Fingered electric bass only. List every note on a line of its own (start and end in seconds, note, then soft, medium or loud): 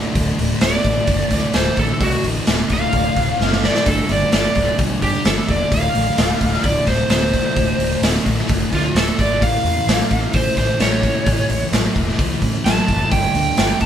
0.15 0.29 D1 medium
0.38 0.52 D1 medium
0.61 0.75 D1 medium
0.85 0.99 A1 medium
1.08 1.22 F#1 medium
1.30 1.45 D2 medium
1.55 1.69 D1 medium
1.78 1.92 A1 medium
2.00 2.14 C2 medium
2.24 2.38 A1 medium
2.48 2.61 D1 medium
2.70 2.84 D1 medium
2.93 3.07 D1 medium
3.16 3.30 D1 medium
3.40 3.68 F#1 medium
3.87 4.00 G1 medium
4.09 4.23 G1 medium
4.32 4.46 G1 medium
4.55 4.69 D1 medium
4.79 4.93 B1 medium
5.02 5.16 G2 medium
5.25 5.39 G1 medium
5.48 5.62 E1 medium
5.72 5.86 D1 medium
5.96 6.09 A1 medium
6.18 6.32 D1 medium
6.41 6.55 D1 medium
6.64 6.78 D1 medium
6.87 7.01 D1 medium
7.09 7.38 D1 medium
7.56 7.70 D1 medium
7.79 7.93 D1 medium
8.02 8.16 D1 medium
8.26 8.40 A1 medium
8.49 8.63 F#1 medium
8.73 8.86 D2 medium
8.95 9.09 D1 medium
9.19 9.42 G#1 medium
9.42 9.56 A1 medium
9.64 9.78 E2 medium
9.87 10.01 A1 medium
10.11 10.25 A1 medium
10.34 10.48 A1 medium
10.57 10.71 A1 medium
10.80 11.08 A1 medium
11.27 11.41 A1 medium
11.49 11.64 A1 medium
11.72 11.86 A1 medium
11.96 12.10 E1 medium
12.19 12.33 C#2 medium
12.42 12.56 A2 medium
12.65 12.79 A1 medium
12.88 13.03 F#1 medium
13.11 13.25 G1 loud
13.35 13.49 D2 medium
13.59 13.73 G1 medium
13.81 13.86 G1 medium